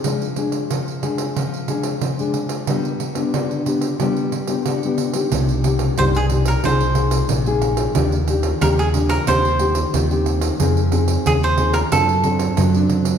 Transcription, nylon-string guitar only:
\new Staff \with { instrumentName = "Nylon-string guitar" } { \time 4/4 \key g \phrygian \tempo 4 = 91 << { <aes d' aes'>16 r16 <aes d' aes'>8. r16 <aes d' aes'>8. r16 <aes d' aes'>8 r16 <aes d' aes'>8. | <b d' g'>8. <b d' g'>8. <b d' g'>8 <b d' g'>8 r16 <b d' g'>8 <b d' g'>8 <bes ees' g'>16~ | \key c \minor <bes ees' g'>8 <bes ees' g'>8 <bes ees' g'>16 r16 <bes ees' g'>8 <bes ees' aes'>16 r16 <bes ees' aes'>8. <bes ees' aes'>8. | <bes d' g'>16 r16 <bes d' g'>16 r16 <bes d' g'>16 r16 <bes d' g'>8 <c' ees' g'>16 r16 <c' ees' g'>16 r16 <c' ees' g'>16 <c' ees' g'>8. |
<c' ees' aes'>16 r16 <c' ees' aes'>8. r16 <c' ees' aes'>16 r16 <c' d' a'>16 r16 <c' d' a'>8 r16 <c' d' a'>8. | } \\ { f4 f4 f4 f4 | g4 d4 g4 d4 | c4 g,4 c4 c4 | ees4 bes,4 ees4 ees4 |
f4 c4 fis4 fis4 | } >> }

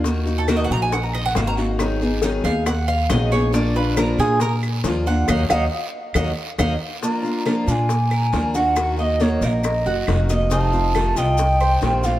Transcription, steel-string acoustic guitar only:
\new Staff \with { instrumentName = "Steel-string acoustic guitar" } { \time 4/4 \key ees \minor \tempo 4 = 138 <ees bes ees' ges'>8 <bes ees' ges'>8 <ees bes ees' ges'>8 <bes ees' ges'>8 r4 <ees bes ees' ges'>8 <bes ees' ges'>8 | <ees ges ces' ees' aes'>8 <ces' ees' aes'>8 <ees ges ces' ees' aes'>8 <ces' ees' aes'>8 r4 <ees ges ces' ees' aes'>8 <ces' ees' aes'>8 | <f bes d' f'>8 <bes d' f'>8 <f bes d' f'>8 <bes d' f'>8 r4 <f bes d' f'>8 <bes d' f'>8 | <ges bes ees'>8 <ges bes ees'>8 r4 <ges bes ees'>8 r8 <ges bes ees'>8 r8 |
<f bes d' f'>8 <bes d' f'>8 <f bes d' f'>8 <bes d' f'>8 r4 <f bes d' f'>8 <bes d' f'>8 | <ees bes ees' ges'>8 <bes ees' ges'>8 <ees bes ees' ges'>8 <bes ees' ges'>8 r4 <ees bes ees' ges'>8 <bes ees' ges'>8 | <c ees a c' f'>8 <a c' f'>8 <c ees a c' f'>8 <a c' f'>8 r4 <c ees a c' f'>8 <a c' f'>8 | }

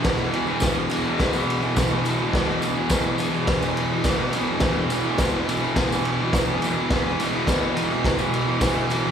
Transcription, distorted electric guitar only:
\new Staff \with { instrumentName = "Distorted electric guitar" } { \clef bass \time 4/4 \key c \lydian \tempo 4 = 105 <e, b, e>8 <e, b, e>16 <b, e>16 <e, b, e>8 <e, b, e>16 <b, e>8 <b, e>8 <b, e>16 <e, b, e>16 <b, e>16 <e, b, e>16 <b, e>16 | <e, b, e>8 <e, b, e>16 <b, e>16 <e, b, e>8 <e, b, e>16 <b, e>8 <b, e>8 <b, e>16 <e, b, e>16 <b, e>16 <e, b, e>16 <b, e>16 | <e, b, e>8 <e, b, e>16 <b, e>16 <e, b, e>8 <e, b, e>16 <b, e>8 <b, e>8 <b, e>16 <e, b, e>16 <b, e>16 <e, b, e>16 <b, e>16 | <e, b, e>8 <e, b, e>16 <b, e>16 <e, b, e>8 <e, b, e>16 <b, e>8 <b, e>8 <b, e>16 <e, b, e>16 <b, e>16 <e, b, e>16 <b, e>16 | }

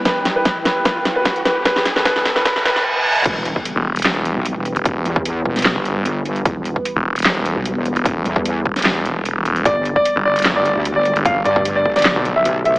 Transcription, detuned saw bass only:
\new Staff \with { instrumentName = "Detuned saw bass" } { \clef bass \time 4/4 \key e \minor \tempo 4 = 150 r1 | r1 | r4 r16 e,,4. r4 e,,16~ | e,,8 r4. r16 g,,8. r4 |
r4 r16 e,,4. r4 e,,16~ | e,,8 r4 e,,2 e,,8 | r4 r16 g,,4. r4 g,,16~ | g,,8 r4. r16 b,,8. r4 | }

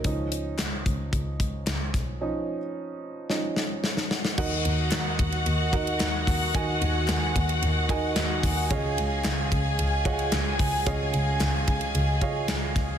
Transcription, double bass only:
\new Staff \with { instrumentName = "Double bass" } { \clef bass \time 4/4 \key ees \minor \tempo 4 = 111 des,4 des,8 des,8 des,8 des,8 des,8 ces,8 | r1 | ees,8 ees,8 ees,8 ees,8 ees,8 ees,8 ees,8 ees,8 | ees,8 ees,8 ees,8 ees,8 ees,8 ees,8 ees,8 ees,8 |
des,8 des,8 des,8 des,8 des,8 des,8 des,8 des,8 | des,8 des,8 des,8 des,8 des,8 des,8 des,8 des,8 | }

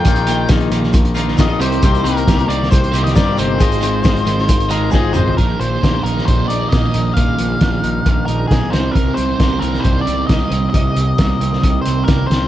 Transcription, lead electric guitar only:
\new Staff \with { instrumentName = "Lead electric guitar" } { \time 4/4 \key c \minor \tempo 4 = 134 g''4 r2 ees''8 c''8~ | c''8 bes'4 d''8 c''8. ees''16 d''8 c''8~ | c''2~ c''8 bes'8 aes'8 c''8 | bes'8 c''4 bes'8 c''8 d''8 ees''4 |
f''2~ f''8 bes'8 aes'8 c''8 | bes'8 c''4 bes'8 c''8 d''8 ees''4 | ees''2~ ees''8 c''8 bes'8 c''8 | }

